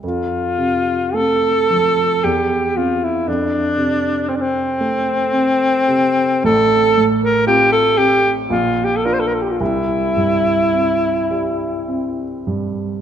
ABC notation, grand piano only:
X:1
M:3/4
L:1/8
Q:1/4=55
K:F
V:1 name="Grand piano" clef=bass
F,, C, [A,C] F, E,, C | F,, C, C A, C C, | A,,, A,, [CF] C B,,, [DF] | C,, G,, C G, C G,, |]